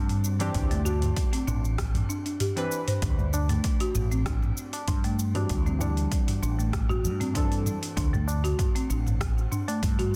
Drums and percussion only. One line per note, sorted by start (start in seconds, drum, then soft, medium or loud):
0.09 mid tom medium
0.09 open hi-hat soft
0.09 shaker soft
0.24 shaker medium
0.40 open hi-hat soft
0.40 tabla na medium
0.40 shaker soft
0.55 kick loud
0.55 mid tom medium
0.55 open hi-hat medium
0.55 shaker soft
0.71 open hi-hat soft
0.71 tabla tin soft
0.71 tabla ge medium
0.71 shaker soft
0.85 tabla na medium
0.85 tabla ge medium
0.85 shaker medium
1.02 mid tom medium
1.02 open hi-hat soft
1.02 shaker soft
1.17 kick loud
1.17 open hi-hat medium
1.17 shaker soft
1.33 open hi-hat soft
1.33 shaker soft
1.47 mid tom medium
1.47 tabla na soft
1.47 shaker medium
1.65 shaker soft
1.78 kick loud
1.78 cross-stick medium
1.78 open hi-hat medium
1.78 shaker soft
1.94 mid tom medium
1.94 open hi-hat soft
1.94 tabla na soft
1.94 tabla ge medium
1.94 shaker soft
2.10 shaker medium
2.26 open hi-hat soft
2.26 tabla tin soft
2.26 shaker soft
2.40 mid tom medium
2.40 open hi-hat medium
2.40 shaker soft
2.57 open hi-hat soft
2.57 shaker soft
2.72 shaker medium
2.88 mid tom medium
2.88 open hi-hat soft
2.88 shaker soft
3.02 kick loud
3.02 mid tom medium
3.02 open hi-hat medium
3.02 shaker soft
3.19 tabla tin soft
3.19 tabla ge loud
3.19 shaker soft
3.33 tabla na medium
3.33 shaker medium
3.49 mid tom medium
3.49 open hi-hat soft
3.49 shaker soft
3.64 kick loud
3.64 open hi-hat medium
3.64 shaker soft
3.80 open hi-hat soft
3.80 shaker soft
3.95 mid tom medium
3.95 shaker medium
4.12 shaker soft
4.26 kick loud
4.26 cross-stick medium
4.26 open hi-hat medium
4.26 shaker soft
4.42 mid tom medium
4.42 shaker soft
4.57 shaker medium
4.73 open hi-hat soft
4.73 tabla na medium
4.73 shaker soft
4.88 kick loud
4.88 mid tom medium
4.88 open hi-hat medium
4.88 shaker soft
5.04 open hi-hat soft
5.04 shaker soft
5.19 shaker medium
5.35 mid tom medium
5.35 open hi-hat soft
5.35 tabla na medium
5.35 shaker soft
5.49 kick loud
5.49 open hi-hat medium
5.49 shaker soft
5.66 tabla ge loud
5.66 shaker soft
5.81 mid tom medium
5.81 tabla na medium
5.81 shaker medium
5.97 open hi-hat soft
5.97 shaker soft
6.12 kick loud
6.12 open hi-hat medium
6.12 shaker soft
6.28 mid tom medium
6.28 open hi-hat soft
6.28 shaker soft
6.43 tabla na soft
6.43 shaker medium
6.59 shaker soft
6.73 kick loud
6.73 cross-stick medium
6.73 mid tom medium
6.73 open hi-hat medium
6.73 shaker soft
6.89 tabla ge loud
6.89 shaker soft
7.05 shaker medium
7.21 mid tom medium
7.21 open hi-hat soft
7.21 tabla tin soft
7.21 shaker soft
7.35 kick loud
7.35 open hi-hat medium
7.35 shaker soft
7.52 open hi-hat soft
7.52 shaker soft
7.66 mid tom medium
7.66 shaker medium
7.83 open hi-hat soft
7.83 shaker soft
7.97 kick loud
7.97 open hi-hat medium
7.97 shaker soft
8.14 mid tom medium
8.14 tabla tin soft
8.14 tabla ge loud
8.14 shaker soft
8.28 tabla na medium
8.28 shaker medium
8.45 open hi-hat soft
8.45 shaker soft
8.59 kick loud
8.59 mid tom medium
8.59 open hi-hat medium
8.59 shaker soft
8.76 open hi-hat soft
8.76 shaker soft
8.90 shaker medium
9.07 mid tom medium
9.07 shaker soft
9.21 kick loud
9.21 cross-stick medium
9.21 open hi-hat medium
9.21 shaker soft
9.38 shaker soft
9.52 mid tom medium
9.52 shaker medium
9.68 open hi-hat soft
9.68 tabla na medium
9.68 shaker soft
9.83 kick loud
9.83 open hi-hat medium
9.83 shaker soft
9.99 mid tom medium
9.99 open hi-hat soft
9.99 shaker soft